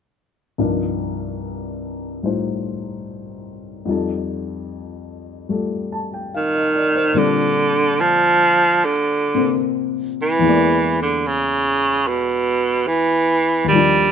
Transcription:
0.58 3.87 C2 soft
0.58 3.87 G2 soft
0.58 3.84 F3 soft
0.58 3.87 D4 soft
0.58 2.23 D#4 soft
0.58 3.87 A#4 soft
2.23 3.87 A2 soft
2.23 3.86 G3 soft
2.23 3.87 D#4 soft
2.23 3.88 F4 soft
2.23 3.88 C5 soft
3.85 7.16 F2 soft
3.85 7.16 F3 soft
3.85 5.48 G3 soft
3.85 7.17 D#4 soft
3.90 5.51 A4 soft
5.49 7.14 G3 soft
5.49 7.16 A3 soft
5.49 7.17 F4 soft
5.49 7.17 A4 soft
5.92 6.17 A5 soft
6.14 6.42 G5 soft
6.34 7.19 D#3 medium
6.34 6.74 F5 soft
6.55 6.91 D#5 soft
6.76 7.01 D5 soft
6.96 7.25 C5 soft
7.13 10.43 A#2 soft
7.13 10.43 D3 soft
7.13 10.44 G3 soft
7.13 9.36 C4 soft
7.18 8.02 D3 medium
7.18 10.45 D4 soft
8.00 8.86 F3 medium
8.85 9.64 D3 medium
9.35 10.43 C3 soft
9.35 10.44 A#3 soft
9.35 10.44 C4 soft
10.22 10.98 E3 medium
10.39 13.66 E2 soft
10.39 13.67 E3 soft
10.44 13.69 G#3 soft
10.44 13.70 A#3 soft
10.49 13.71 D5 soft
11.02 11.28 D3 medium
11.27 12.09 C#3 medium
12.07 12.88 B2 medium
12.87 13.64 E3 medium
13.64 14.12 D#2 soft
13.64 14.12 D#3 soft
13.68 14.12 F3 soft
13.68 14.12 G3 medium
13.73 14.12 G3 soft
13.73 14.12 D4 soft

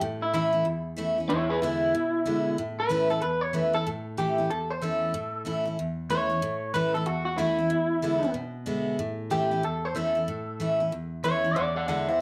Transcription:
0.01 0.63 A2 loud
0.22 0.33 E4 medium
0.33 0.53 E3 medium
0.33 0.53 A3 medium
0.33 0.53 C#4 medium
0.33 0.65 E4 loud
0.33 0.51 E4 loud
0.53 0.65 C#4 medium
0.53 0.64 E4 medium
0.65 1.27 E2 medium
0.97 1.17 E3 medium
0.97 1.17 A3 medium
0.97 1.17 C#4 medium
0.97 1.17 E4 medium
1.18 1.30 C#4 medium
1.18 1.29 E4 medium
1.29 1.91 E2 medium
1.29 1.50 E4 medium
1.29 1.49 C#5 medium
1.50 1.61 G#4 medium
1.50 1.61 B4 loud
1.62 1.93 D3 medium
1.62 1.93 G#3 medium
1.62 1.93 B3 medium
1.62 2.55 E4 loud
1.62 1.94 E4 loud
1.95 2.56 B2 medium
2.25 2.56 D3 medium
2.25 2.57 G#3 medium
2.25 2.57 B3 medium
2.25 2.57 E4 medium
2.58 3.20 A2 medium
2.80 3.10 B4 loud
2.89 3.09 E3 medium
2.89 3.09 A3 medium
2.89 3.10 C#4 loud
2.89 3.09 E4 medium
3.10 3.22 C#4 medium
3.10 3.21 E4 medium
3.10 3.22 A4 loud
3.21 3.83 E2 medium
3.21 3.41 B4 medium
3.41 3.54 C#5 loud
3.53 3.73 E3 medium
3.53 3.73 A3 medium
3.53 3.73 C#4 medium
3.53 3.72 E4 medium
3.53 3.74 B4 loud
3.73 3.86 C#4 soft
3.73 3.85 E4 medium
3.73 3.86 A4 loud
3.87 4.48 A2 medium
4.17 4.37 E3 medium
4.17 4.37 A3 medium
4.17 4.38 C#4 medium
4.17 4.37 E4 medium
4.17 4.49 G4 medium
4.38 4.50 C#4 medium
4.38 4.49 E4 medium
4.50 5.12 E2 medium
4.50 4.70 A4 medium
4.70 4.82 C5 medium
4.82 5.13 E3 medium
4.82 5.13 A3 medium
4.82 5.13 C#4 medium
4.82 5.14 E4 medium
4.82 5.75 A4 medium
5.14 5.76 A2 loud
5.45 5.65 E3 medium
5.45 5.65 A3 medium
5.45 5.66 C#4 medium
5.45 5.64 E4 medium
5.65 5.78 C#4 medium
5.65 5.77 E4 medium
5.79 6.40 E2 medium
6.10 6.30 E3 medium
6.10 6.30 A3 medium
6.10 6.30 C#4 medium
6.10 6.28 E4 medium
6.10 6.73 C#5 loud
6.30 6.42 C#4 soft
6.30 6.41 E4 medium
6.42 7.04 A2 loud
6.74 6.94 E3 medium
6.74 6.94 A3 medium
6.74 6.94 C#4 medium
6.74 6.94 E4 loud
6.74 6.94 B4 medium
6.94 7.07 C#4 medium
6.94 7.06 E4 medium
6.94 7.06 A4 loud
7.06 7.68 E2 medium
7.06 7.24 F#4 loud
7.25 7.37 F#4 loud
7.38 7.58 E3 medium
7.38 7.58 A3 medium
7.38 7.58 C#4 medium
7.38 8.32 E4 loud
7.38 7.57 E4 medium
7.58 7.71 C#4 soft
7.58 7.70 E4 medium
7.70 8.32 E2 medium
8.02 8.22 D3 medium
8.02 8.22 G#3 medium
8.02 8.23 B3 loud
8.02 8.22 E4 loud
8.23 8.35 B3 medium
8.23 8.34 E4 medium
8.34 8.96 B2 medium
8.66 8.97 D3 medium
8.66 8.98 G#3 medium
8.66 8.98 B3 medium
8.66 8.98 E4 medium
8.99 9.61 A2 medium
9.30 9.50 E3 medium
9.30 9.51 A3 medium
9.30 9.51 C#4 medium
9.30 9.50 E4 medium
9.30 9.62 G4 loud
9.51 9.64 C#4 medium
9.51 9.63 E4 medium
9.63 10.25 E2 medium
9.63 9.85 A4 medium
9.85 9.96 C5 medium
9.95 10.15 E3 medium
9.95 10.15 A3 medium
9.95 10.15 C#4 medium
9.95 10.14 E4 medium
9.95 10.89 A4 loud
10.15 10.28 C#4 medium
10.15 10.27 E4 medium
10.28 10.90 A2 medium
10.60 10.79 E3 medium
10.60 10.79 A3 medium
10.60 10.80 C#4 medium
10.60 10.79 E4 medium
10.80 10.92 C#4 medium
10.80 10.91 E4 medium
10.92 11.54 E2 medium
11.24 11.43 E3 medium
11.24 11.43 A3 medium
11.24 11.44 C#4 loud
11.24 11.43 E4 medium
11.24 11.57 C#5 loud
11.44 11.56 C#4 medium
11.44 11.56 E4 medium
11.56 12.18 E2 medium
11.56 11.75 D5 medium
11.56 11.76 F#5 loud
11.76 11.87 D5 medium
11.76 11.87 F#5 loud
11.88 12.07 D3 medium
11.88 12.08 G#3 medium
11.88 12.08 B3 medium
11.88 12.07 E4 medium
11.88 12.08 D5 medium
11.88 12.09 F#5 loud
12.08 12.20 B3 medium
12.08 12.20 E4 medium
12.08 12.20 C5 medium
12.08 12.20 E5 loud

